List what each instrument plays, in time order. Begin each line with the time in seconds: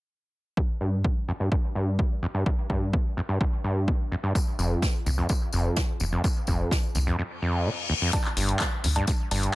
0.57 acid bass G2, kick
0.81 acid bass G2
1.04 acid bass D3, kick
1.28 acid bass F2
1.40 acid bass G2
1.52 acid bass G2, kick
1.75 acid bass G2
1.99 acid bass D3, kick
2.23 acid bass F2
2.34 acid bass G2
2.46 acid bass G2, kick
2.70 acid bass G2, kick
2.93 acid bass D3, kick
3.17 acid bass F2
3.29 acid bass G2
3.41 acid bass G2, kick
3.64 acid bass G2
3.88 acid bass D3, kick
4.12 acid bass F2
4.23 acid bass G2
4.35 kick, tambourine
4.59 analog synth bass F1, acid bass F2, tambourine
4.82 acid bass C3, kick, snare, tambourine
5.06 analog synth bass C2, acid bass D#2, tambourine
5.18 acid bass F2
5.29 acid bass F2, kick, tambourine
5.53 analog synth bass F1, acid bass F2, tambourine
5.76 acid bass C3, kick, snare, tambourine
6.00 analog synth bass F1, acid bass D#2, tambourine
6.12 acid bass F2
6.24 acid bass F2, kick, tambourine
6.47 analog synth bass F1, acid bass F2, kick, tambourine
6.71 acid bass C3, kick, snare, tambourine
6.95 analog synth bass C2, acid bass D#2, tambourine
7.07 acid bass F2, closed hi-hat
7.19 acid bass F2, reverse cymbal
7.42 acid bass F2
7.66 acid bass C3
7.90 acid bass D#2
8.02 acid bass F2
8.13 kick, closed hi-hat, tambourine, cowbell
8.25 clap
8.37 analog synth bass G1, acid bass G2, open hi-hat, tambourine
8.49 closed hi-hat
8.60 acid bass D3, kick, snare, clap, closed hi-hat, tambourine, cowbell
8.84 analog synth bass D2, acid bass F2, open hi-hat, tambourine
8.96 acid bass G2, closed hi-hat, cowbell
9.07 kick, closed hi-hat, tambourine
9.31 analog synth bass G1, acid bass G2, open hi-hat, tambourine, cowbell
9.43 closed hi-hat